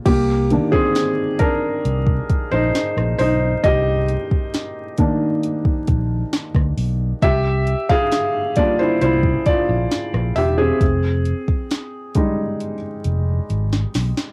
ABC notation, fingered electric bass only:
X:1
M:4/4
L:1/16
Q:1/4=67
K:Cm
V:1 name="Fingered electric bass" clef=bass
C,,3 z4 z C,,2 z B,,, z B,,, =B,,,2 | C,,3 z6 z B,,,2 z D,, =B,,,2 | C,,3 z4 z C,,2 z B,,, z B,,, =E,,,2 | F,,,3 z6 z F,,,2 A,,,2 =B,,, z |]